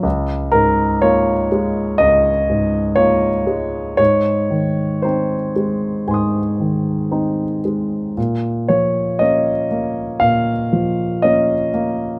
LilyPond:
<<
  \new Staff \with { instrumentName = "Grand piano" } { \time 4/4 \key bes \minor \tempo 4 = 59 << { r1 | r2 <aes'' c''' ees'''>2 | r1 | } \\ { r8 bes'8 des''4 ees''4 des''4 | des''4 c''2~ c''8 r8 | r8 des''8 ees''4 f''4 ees''4 | } >> }
  \new Staff \with { instrumentName = "Grand piano" } { \clef bass \time 4/4 \key bes \minor des,8 aes,8 <bes f'>8 aes8 des,8 aes,8 <bes f'>8 aes8 | aes,8 ees8 <c' ees'>8 aes8 aes,8 ees8 <c' ees'>8 aes8 | bes,8 f8 <bes des'>8 bes8 bes,8 f8 <bes des'>8 bes8 | }
>>